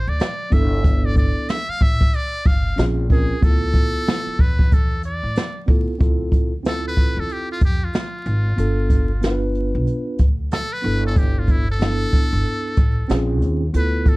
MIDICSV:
0, 0, Header, 1, 6, 480
1, 0, Start_track
1, 0, Tempo, 645161
1, 626, Time_signature, 4, 2, 24, 8
1, 10540, End_track
2, 0, Start_track
2, 0, Title_t, "Muted trumpet"
2, 0, Program_c, 0, 59
2, 0, Note_on_c, 0, 72, 90
2, 65, Note_on_c, 0, 74, 100
2, 76, Note_off_c, 0, 72, 0
2, 393, Note_on_c, 0, 76, 89
2, 404, Note_off_c, 0, 74, 0
2, 784, Note_on_c, 0, 74, 101
2, 795, Note_off_c, 0, 76, 0
2, 871, Note_off_c, 0, 74, 0
2, 877, Note_on_c, 0, 74, 104
2, 1112, Note_on_c, 0, 76, 123
2, 1123, Note_off_c, 0, 74, 0
2, 1262, Note_on_c, 0, 77, 111
2, 1273, Note_off_c, 0, 76, 0
2, 1356, Note_on_c, 0, 76, 112
2, 1367, Note_off_c, 0, 77, 0
2, 1598, Note_on_c, 0, 74, 111
2, 1609, Note_off_c, 0, 76, 0
2, 1835, Note_on_c, 0, 77, 99
2, 1846, Note_off_c, 0, 74, 0
2, 2119, Note_off_c, 0, 77, 0
2, 2318, Note_on_c, 0, 68, 88
2, 2558, Note_on_c, 0, 69, 103
2, 2569, Note_off_c, 0, 68, 0
2, 3278, Note_on_c, 0, 71, 92
2, 3289, Note_off_c, 0, 69, 0
2, 3522, Note_on_c, 0, 69, 92
2, 3533, Note_off_c, 0, 71, 0
2, 3754, Note_off_c, 0, 69, 0
2, 3760, Note_on_c, 0, 74, 94
2, 4203, Note_off_c, 0, 74, 0
2, 4968, Note_on_c, 0, 69, 110
2, 5095, Note_off_c, 0, 69, 0
2, 5117, Note_on_c, 0, 71, 108
2, 5356, Note_on_c, 0, 69, 97
2, 5367, Note_off_c, 0, 71, 0
2, 5449, Note_on_c, 0, 67, 99
2, 5460, Note_off_c, 0, 69, 0
2, 5585, Note_off_c, 0, 67, 0
2, 5594, Note_on_c, 0, 65, 95
2, 5671, Note_off_c, 0, 65, 0
2, 5690, Note_on_c, 0, 67, 99
2, 5835, Note_on_c, 0, 65, 81
2, 5847, Note_off_c, 0, 67, 0
2, 7025, Note_off_c, 0, 65, 0
2, 7840, Note_on_c, 0, 69, 113
2, 7986, Note_on_c, 0, 71, 104
2, 7997, Note_off_c, 0, 69, 0
2, 8220, Note_off_c, 0, 71, 0
2, 8233, Note_on_c, 0, 69, 98
2, 8319, Note_on_c, 0, 67, 92
2, 8330, Note_off_c, 0, 69, 0
2, 8472, Note_on_c, 0, 65, 81
2, 8483, Note_off_c, 0, 67, 0
2, 8565, Note_on_c, 0, 64, 91
2, 8576, Note_off_c, 0, 65, 0
2, 8703, Note_off_c, 0, 64, 0
2, 8713, Note_on_c, 0, 69, 114
2, 9874, Note_off_c, 0, 69, 0
2, 10245, Note_on_c, 0, 71, 92
2, 10482, Note_on_c, 0, 69, 92
2, 10493, Note_off_c, 0, 71, 0
2, 10540, Note_off_c, 0, 69, 0
2, 10540, End_track
3, 0, Start_track
3, 0, Title_t, "Tine electric piano"
3, 0, Program_c, 1, 4
3, 375, Note_on_c, 1, 59, 80
3, 383, Note_on_c, 1, 62, 83
3, 394, Note_on_c, 1, 64, 66
3, 400, Note_on_c, 1, 69, 98
3, 1160, Note_off_c, 1, 59, 0
3, 1164, Note_off_c, 1, 62, 0
3, 1169, Note_off_c, 1, 64, 0
3, 1172, Note_off_c, 1, 69, 0
3, 2054, Note_on_c, 1, 60, 75
3, 2062, Note_on_c, 1, 61, 66
3, 2071, Note_on_c, 1, 65, 77
3, 2080, Note_on_c, 1, 68, 78
3, 2263, Note_off_c, 1, 60, 0
3, 2267, Note_off_c, 1, 61, 0
3, 2272, Note_off_c, 1, 65, 0
3, 2276, Note_off_c, 1, 68, 0
3, 2298, Note_on_c, 1, 60, 78
3, 2306, Note_on_c, 1, 61, 72
3, 2314, Note_on_c, 1, 65, 67
3, 2323, Note_on_c, 1, 70, 79
3, 2495, Note_off_c, 1, 60, 0
3, 2500, Note_off_c, 1, 61, 0
3, 2503, Note_off_c, 1, 65, 0
3, 2508, Note_off_c, 1, 70, 0
3, 2537, Note_on_c, 1, 59, 76
3, 2544, Note_on_c, 1, 64, 69
3, 2555, Note_on_c, 1, 65, 66
3, 2561, Note_on_c, 1, 69, 84
3, 3260, Note_off_c, 1, 59, 0
3, 3263, Note_off_c, 1, 64, 0
3, 3269, Note_off_c, 1, 65, 0
3, 3272, Note_off_c, 1, 69, 0
3, 4214, Note_on_c, 1, 59, 73
3, 4222, Note_on_c, 1, 64, 67
3, 4230, Note_on_c, 1, 65, 73
3, 4240, Note_on_c, 1, 69, 80
3, 4413, Note_off_c, 1, 59, 0
3, 4418, Note_off_c, 1, 64, 0
3, 4421, Note_off_c, 1, 65, 0
3, 4426, Note_off_c, 1, 69, 0
3, 4452, Note_on_c, 1, 60, 79
3, 4462, Note_on_c, 1, 64, 70
3, 4471, Note_on_c, 1, 65, 81
3, 4480, Note_on_c, 1, 69, 90
3, 4845, Note_off_c, 1, 60, 0
3, 4850, Note_off_c, 1, 64, 0
3, 4855, Note_off_c, 1, 65, 0
3, 4859, Note_off_c, 1, 69, 0
3, 4934, Note_on_c, 1, 60, 78
3, 4942, Note_on_c, 1, 64, 69
3, 4951, Note_on_c, 1, 65, 62
3, 4960, Note_on_c, 1, 69, 77
3, 5658, Note_off_c, 1, 60, 0
3, 5662, Note_off_c, 1, 64, 0
3, 5667, Note_off_c, 1, 65, 0
3, 5671, Note_off_c, 1, 69, 0
3, 6371, Note_on_c, 1, 59, 77
3, 6380, Note_on_c, 1, 62, 68
3, 6389, Note_on_c, 1, 65, 72
3, 6398, Note_on_c, 1, 69, 103
3, 6765, Note_off_c, 1, 59, 0
3, 6769, Note_off_c, 1, 62, 0
3, 6774, Note_off_c, 1, 65, 0
3, 6778, Note_off_c, 1, 69, 0
3, 6853, Note_on_c, 1, 59, 80
3, 6863, Note_on_c, 1, 62, 85
3, 6869, Note_on_c, 1, 65, 74
3, 6879, Note_on_c, 1, 70, 74
3, 6927, Note_on_c, 1, 71, 101
3, 6932, Note_off_c, 1, 70, 0
3, 7578, Note_off_c, 1, 59, 0
3, 7583, Note_off_c, 1, 62, 0
3, 7586, Note_off_c, 1, 65, 0
3, 7615, Note_off_c, 1, 71, 0
3, 8051, Note_on_c, 1, 59, 75
3, 8059, Note_on_c, 1, 62, 72
3, 8068, Note_on_c, 1, 64, 75
3, 8076, Note_on_c, 1, 69, 85
3, 8657, Note_off_c, 1, 59, 0
3, 8661, Note_off_c, 1, 62, 0
3, 8665, Note_off_c, 1, 64, 0
3, 8669, Note_off_c, 1, 69, 0
3, 8773, Note_on_c, 1, 59, 75
3, 8782, Note_on_c, 1, 62, 72
3, 8791, Note_on_c, 1, 64, 69
3, 8800, Note_on_c, 1, 69, 81
3, 9498, Note_off_c, 1, 59, 0
3, 9502, Note_off_c, 1, 62, 0
3, 9507, Note_off_c, 1, 64, 0
3, 9511, Note_off_c, 1, 69, 0
3, 9732, Note_on_c, 1, 60, 94
3, 9741, Note_on_c, 1, 61, 85
3, 9750, Note_on_c, 1, 65, 81
3, 9757, Note_on_c, 1, 68, 101
3, 10145, Note_off_c, 1, 60, 0
3, 10150, Note_off_c, 1, 61, 0
3, 10154, Note_off_c, 1, 65, 0
3, 10158, Note_off_c, 1, 68, 0
3, 10214, Note_on_c, 1, 59, 74
3, 10222, Note_on_c, 1, 64, 68
3, 10231, Note_on_c, 1, 65, 59
3, 10239, Note_on_c, 1, 69, 86
3, 10540, Note_off_c, 1, 59, 0
3, 10540, Note_off_c, 1, 64, 0
3, 10540, Note_off_c, 1, 65, 0
3, 10540, Note_off_c, 1, 69, 0
3, 10540, End_track
4, 0, Start_track
4, 0, Title_t, "Upright bass"
4, 0, Program_c, 2, 32
4, 56, Note_on_c, 2, 38, 93
4, 129, Note_off_c, 2, 38, 0
4, 386, Note_on_c, 2, 31, 101
4, 963, Note_off_c, 2, 31, 0
4, 1345, Note_on_c, 2, 33, 95
4, 1538, Note_off_c, 2, 33, 0
4, 1827, Note_on_c, 2, 31, 69
4, 2019, Note_off_c, 2, 31, 0
4, 2067, Note_on_c, 2, 34, 97
4, 2451, Note_off_c, 2, 34, 0
4, 2547, Note_on_c, 2, 38, 86
4, 2931, Note_off_c, 2, 38, 0
4, 3266, Note_on_c, 2, 40, 95
4, 3864, Note_off_c, 2, 40, 0
4, 3893, Note_on_c, 2, 45, 84
4, 3968, Note_off_c, 2, 45, 0
4, 4225, Note_on_c, 2, 38, 98
4, 4344, Note_off_c, 2, 38, 0
4, 4467, Note_on_c, 2, 38, 82
4, 5304, Note_off_c, 2, 38, 0
4, 5333, Note_on_c, 2, 40, 86
4, 5407, Note_off_c, 2, 40, 0
4, 5665, Note_on_c, 2, 41, 78
4, 5858, Note_off_c, 2, 41, 0
4, 6144, Note_on_c, 2, 32, 99
4, 6337, Note_off_c, 2, 32, 0
4, 6382, Note_on_c, 2, 31, 90
4, 7222, Note_off_c, 2, 31, 0
4, 7252, Note_on_c, 2, 35, 90
4, 7327, Note_off_c, 2, 35, 0
4, 7584, Note_on_c, 2, 38, 78
4, 7895, Note_off_c, 2, 38, 0
4, 8065, Note_on_c, 2, 31, 102
4, 8953, Note_off_c, 2, 31, 0
4, 9171, Note_on_c, 2, 31, 91
4, 9246, Note_off_c, 2, 31, 0
4, 9503, Note_on_c, 2, 33, 94
4, 9697, Note_off_c, 2, 33, 0
4, 9743, Note_on_c, 2, 34, 96
4, 9983, Note_off_c, 2, 34, 0
4, 9983, Note_on_c, 2, 39, 100
4, 10176, Note_off_c, 2, 39, 0
4, 10221, Note_on_c, 2, 38, 98
4, 10540, Note_off_c, 2, 38, 0
4, 10540, End_track
5, 0, Start_track
5, 0, Title_t, "Muted upright bass strokes"
5, 1253, Note_on_c, 9, 29, 49
5, 1328, Note_off_c, 9, 29, 0
5, 3174, Note_on_c, 9, 29, 48
5, 3249, Note_off_c, 9, 29, 0
5, 10540, End_track
6, 0, Start_track
6, 0, Title_t, "Drums"
6, 146, Note_on_c, 9, 42, 93
6, 158, Note_on_c, 9, 38, 119
6, 220, Note_off_c, 9, 42, 0
6, 233, Note_off_c, 9, 38, 0
6, 386, Note_on_c, 9, 36, 96
6, 386, Note_on_c, 9, 42, 70
6, 460, Note_off_c, 9, 42, 0
6, 461, Note_off_c, 9, 36, 0
6, 627, Note_on_c, 9, 42, 106
6, 628, Note_on_c, 9, 36, 121
6, 701, Note_off_c, 9, 42, 0
6, 702, Note_off_c, 9, 36, 0
6, 862, Note_on_c, 9, 36, 84
6, 863, Note_on_c, 9, 42, 77
6, 936, Note_off_c, 9, 36, 0
6, 937, Note_off_c, 9, 42, 0
6, 1106, Note_on_c, 9, 42, 97
6, 1115, Note_on_c, 9, 38, 104
6, 1180, Note_off_c, 9, 42, 0
6, 1190, Note_off_c, 9, 38, 0
6, 1344, Note_on_c, 9, 42, 58
6, 1346, Note_on_c, 9, 36, 88
6, 1419, Note_off_c, 9, 42, 0
6, 1421, Note_off_c, 9, 36, 0
6, 1494, Note_on_c, 9, 36, 93
6, 1569, Note_off_c, 9, 36, 0
6, 1586, Note_on_c, 9, 42, 79
6, 1660, Note_off_c, 9, 42, 0
6, 1822, Note_on_c, 9, 42, 72
6, 1827, Note_on_c, 9, 36, 103
6, 1896, Note_off_c, 9, 42, 0
6, 1901, Note_off_c, 9, 36, 0
6, 2065, Note_on_c, 9, 42, 98
6, 2077, Note_on_c, 9, 38, 116
6, 2139, Note_off_c, 9, 42, 0
6, 2152, Note_off_c, 9, 38, 0
6, 2304, Note_on_c, 9, 46, 49
6, 2306, Note_on_c, 9, 36, 93
6, 2379, Note_off_c, 9, 46, 0
6, 2380, Note_off_c, 9, 36, 0
6, 2548, Note_on_c, 9, 36, 112
6, 2549, Note_on_c, 9, 42, 103
6, 2622, Note_off_c, 9, 36, 0
6, 2624, Note_off_c, 9, 42, 0
6, 2781, Note_on_c, 9, 36, 83
6, 2782, Note_on_c, 9, 42, 78
6, 2856, Note_off_c, 9, 36, 0
6, 2856, Note_off_c, 9, 42, 0
6, 3029, Note_on_c, 9, 42, 107
6, 3038, Note_on_c, 9, 38, 120
6, 3103, Note_off_c, 9, 42, 0
6, 3113, Note_off_c, 9, 38, 0
6, 3265, Note_on_c, 9, 42, 58
6, 3266, Note_on_c, 9, 36, 97
6, 3339, Note_off_c, 9, 42, 0
6, 3341, Note_off_c, 9, 36, 0
6, 3415, Note_on_c, 9, 36, 94
6, 3489, Note_off_c, 9, 36, 0
6, 3509, Note_on_c, 9, 42, 84
6, 3513, Note_on_c, 9, 36, 107
6, 3584, Note_off_c, 9, 42, 0
6, 3587, Note_off_c, 9, 36, 0
6, 3741, Note_on_c, 9, 42, 77
6, 3816, Note_off_c, 9, 42, 0
6, 3986, Note_on_c, 9, 42, 101
6, 3998, Note_on_c, 9, 38, 127
6, 4061, Note_off_c, 9, 42, 0
6, 4073, Note_off_c, 9, 38, 0
6, 4227, Note_on_c, 9, 36, 91
6, 4227, Note_on_c, 9, 46, 49
6, 4301, Note_off_c, 9, 36, 0
6, 4302, Note_off_c, 9, 46, 0
6, 4468, Note_on_c, 9, 36, 116
6, 4469, Note_on_c, 9, 42, 102
6, 4543, Note_off_c, 9, 36, 0
6, 4544, Note_off_c, 9, 42, 0
6, 4701, Note_on_c, 9, 36, 88
6, 4704, Note_on_c, 9, 42, 76
6, 4776, Note_off_c, 9, 36, 0
6, 4778, Note_off_c, 9, 42, 0
6, 4947, Note_on_c, 9, 42, 92
6, 4957, Note_on_c, 9, 38, 102
6, 5022, Note_off_c, 9, 42, 0
6, 5031, Note_off_c, 9, 38, 0
6, 5184, Note_on_c, 9, 42, 54
6, 5186, Note_on_c, 9, 36, 80
6, 5258, Note_off_c, 9, 42, 0
6, 5260, Note_off_c, 9, 36, 0
6, 5425, Note_on_c, 9, 42, 81
6, 5500, Note_off_c, 9, 42, 0
6, 5659, Note_on_c, 9, 42, 75
6, 5665, Note_on_c, 9, 36, 99
6, 5734, Note_off_c, 9, 42, 0
6, 5740, Note_off_c, 9, 36, 0
6, 5902, Note_on_c, 9, 42, 91
6, 5914, Note_on_c, 9, 38, 120
6, 5976, Note_off_c, 9, 42, 0
6, 5989, Note_off_c, 9, 38, 0
6, 6142, Note_on_c, 9, 42, 58
6, 6216, Note_off_c, 9, 42, 0
6, 6384, Note_on_c, 9, 42, 99
6, 6458, Note_off_c, 9, 42, 0
6, 6620, Note_on_c, 9, 36, 79
6, 6621, Note_on_c, 9, 42, 76
6, 6694, Note_off_c, 9, 36, 0
6, 6695, Note_off_c, 9, 42, 0
6, 6864, Note_on_c, 9, 42, 97
6, 6874, Note_on_c, 9, 38, 106
6, 6939, Note_off_c, 9, 42, 0
6, 6948, Note_off_c, 9, 38, 0
6, 7102, Note_on_c, 9, 42, 52
6, 7176, Note_off_c, 9, 42, 0
6, 7343, Note_on_c, 9, 42, 79
6, 7418, Note_off_c, 9, 42, 0
6, 7577, Note_on_c, 9, 42, 79
6, 7584, Note_on_c, 9, 36, 86
6, 7651, Note_off_c, 9, 42, 0
6, 7659, Note_off_c, 9, 36, 0
6, 7822, Note_on_c, 9, 42, 96
6, 7834, Note_on_c, 9, 38, 126
6, 7896, Note_off_c, 9, 42, 0
6, 7908, Note_off_c, 9, 38, 0
6, 8062, Note_on_c, 9, 42, 63
6, 8136, Note_off_c, 9, 42, 0
6, 8303, Note_on_c, 9, 42, 105
6, 8305, Note_on_c, 9, 36, 124
6, 8377, Note_off_c, 9, 42, 0
6, 8380, Note_off_c, 9, 36, 0
6, 8540, Note_on_c, 9, 36, 84
6, 8540, Note_on_c, 9, 42, 74
6, 8614, Note_off_c, 9, 36, 0
6, 8614, Note_off_c, 9, 42, 0
6, 8784, Note_on_c, 9, 42, 95
6, 8794, Note_on_c, 9, 38, 115
6, 8859, Note_off_c, 9, 42, 0
6, 8868, Note_off_c, 9, 38, 0
6, 9022, Note_on_c, 9, 42, 55
6, 9024, Note_on_c, 9, 36, 90
6, 9096, Note_off_c, 9, 42, 0
6, 9099, Note_off_c, 9, 36, 0
6, 9263, Note_on_c, 9, 42, 88
6, 9337, Note_off_c, 9, 42, 0
6, 9498, Note_on_c, 9, 42, 76
6, 9504, Note_on_c, 9, 36, 96
6, 9572, Note_off_c, 9, 42, 0
6, 9579, Note_off_c, 9, 36, 0
6, 9741, Note_on_c, 9, 42, 94
6, 9753, Note_on_c, 9, 38, 127
6, 9815, Note_off_c, 9, 42, 0
6, 9827, Note_off_c, 9, 38, 0
6, 9983, Note_on_c, 9, 42, 66
6, 10058, Note_off_c, 9, 42, 0
6, 10222, Note_on_c, 9, 42, 112
6, 10297, Note_off_c, 9, 42, 0
6, 10458, Note_on_c, 9, 36, 88
6, 10458, Note_on_c, 9, 42, 75
6, 10532, Note_off_c, 9, 42, 0
6, 10533, Note_off_c, 9, 36, 0
6, 10540, End_track
0, 0, End_of_file